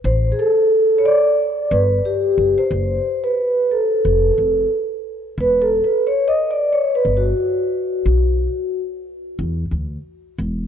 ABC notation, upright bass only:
X:1
M:4/4
L:1/16
Q:"Swing 16ths" 1/4=90
K:Amix
V:1 name="Upright bass" clef=bass
A,,,2 z8 G,,,2 z2 F,,, z | F,,,2 z6 =F,,,2 F,,,2 z4 | E,,,3 z6 z G,,,2 z4 | B,,,3 z4 z E,,2 D,,2 z2 E,,,2 |]